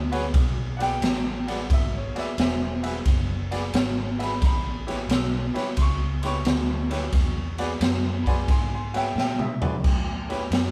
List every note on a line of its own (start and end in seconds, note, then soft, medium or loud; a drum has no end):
0.00 0.32 D2 medium
0.12 0.23 F#4 loud
0.12 0.23 G#4 medium
0.12 0.23 B4 medium
0.12 0.23 C#5 loud
0.12 snare soft
0.12 ride medium
0.34 1.00 B1 medium
0.34 kick loud
0.34 snare soft
0.34 ride medium
0.77 0.90 F#4 medium
0.77 0.90 G#4 medium
0.77 0.90 B4 medium
0.77 0.90 D5 medium
0.77 0.83 F#5 medium
0.77 ride medium
0.82 1.46 G5 loud
0.82 snare soft
1.02 1.68 A1 medium
1.02 snare loud
1.02 ride loud
1.47 1.59 F#4 medium
1.47 1.59 G#4 medium
1.47 1.59 B4 medium
1.47 1.59 D5 medium
1.47 1.70 F#5 loud
1.47 snare soft
1.47 ride medium
1.70 2.12 G#1 medium
1.70 1.94 E5 medium
1.70 kick loud
1.70 snare soft
1.70 ride medium
1.96 2.16 C#5 medium
2.15 2.26 F#4 medium
2.15 2.26 G#4 medium
2.15 2.27 B4 medium
2.15 2.27 D5 medium
2.15 muted fingered electric bass stroke soft
2.15 snare soft
2.15 ride medium
2.19 2.39 E5 loud
2.38 3.03 E1 loud
2.38 3.71 C5 medium
2.38 snare loud
2.38 ride medium
2.42 2.82 E5 medium
2.83 2.94 F#4 medium
2.83 2.94 G#4 medium
2.83 2.94 B4 medium
2.83 2.94 E5 medium
2.83 snare soft
2.83 ride medium
3.05 3.71 F#1 medium
3.05 kick loud
3.05 snare soft
3.05 ride medium
3.51 3.62 F#4 medium
3.51 3.63 G#4 medium
3.51 3.62 B4 medium
3.51 3.62 D5 medium
3.51 snare soft
3.51 ride medium
3.74 4.39 G#1 loud
3.74 snare loud
3.74 ride medium
4.19 4.30 F#4 medium
4.19 4.30 G#4 medium
4.19 4.30 B4 medium
4.19 4.30 E5 medium
4.19 snare soft
4.19 ride medium
4.24 4.43 B5 loud
4.41 5.07 A1 loud
4.41 4.46 A#5 medium
4.41 kick loud
4.41 snare soft
4.41 ride medium
4.46 5.09 B5 loud
4.87 4.98 E4 medium
4.87 4.98 G4 medium
4.87 4.98 B4 medium
4.87 4.98 C#5 medium
4.87 snare soft
4.87 ride medium
5.09 5.51 B1 loud
5.09 snare loud
5.09 ride medium
5.14 5.78 E6 medium
5.54 5.66 E4 medium
5.54 5.66 G4 medium
5.54 5.66 B4 medium
5.54 5.66 C#5 medium
5.54 snare soft
5.54 ride medium
5.77 6.43 C#2 medium
5.77 5.82 C6 medium
5.77 kick loud
5.77 snare soft
5.77 ride medium
5.82 6.24 C#6 loud
6.22 6.34 E4 medium
6.22 6.34 G4 medium
6.22 6.34 B4 medium
6.22 6.34 C#5 medium
6.22 6.24 C6 medium
6.22 snare soft
6.22 ride medium
6.27 7.56 C#6 loud
6.45 7.11 D2 loud
6.45 snare loud
6.45 ride medium
6.90 7.01 E4 medium
6.90 7.02 G4 medium
6.90 7.02 B4 medium
6.90 7.02 C#5 medium
6.90 snare soft
6.90 ride medium
7.13 7.78 E2 medium
7.13 kick loud
7.13 snare soft
7.13 ride medium
7.58 7.70 F#4 loud
7.58 7.70 G#4 medium
7.58 7.70 B4 medium
7.58 7.70 D5 loud
7.58 snare soft
7.58 ride medium
7.80 8.46 F#2 loud
7.80 snare loud
7.80 ride loud
8.24 8.38 F#4 medium
8.24 8.38 G#4 medium
8.24 8.38 B4 medium
8.24 8.38 D5 medium
8.24 8.29 B5 medium
8.24 kick medium
8.24 ride medium
8.28 8.48 G#5 medium
8.28 8.49 C6 medium
8.28 snare soft
8.48 9.14 G#2 medium
8.48 8.70 G#5 medium
8.48 8.71 C6 medium
8.48 kick loud
8.48 snare soft
8.48 ride medium
8.74 8.94 G#5 medium
8.74 8.95 C6 medium
8.94 9.05 F#4 medium
8.94 9.05 G#4 medium
8.94 9.05 B4 medium
8.94 9.05 C#5 medium
8.94 9.16 E5 medium
8.94 9.17 G5 loud
8.94 snare soft
8.94 ride medium
9.16 9.82 A#2 loud
9.16 9.39 E5 medium
9.16 9.40 G5 loud
9.16 snare medium
9.39 9.77 E5 medium
9.39 mid tom medium
9.61 9.73 F#4 medium
9.61 9.73 G#4 medium
9.61 9.73 B4 medium
9.61 9.73 D5 medium
9.61 floor tom loud
9.84 10.50 A2 medium
9.84 kick loud
9.84 snare soft
9.84 crash loud
10.29 10.41 E4 medium
10.29 10.41 G4 medium
10.29 10.41 B4 medium
10.29 10.41 C#5 medium
10.29 snare soft
10.29 ride medium
10.51 10.71 F#2 loud
10.51 snare loud
10.51 ride medium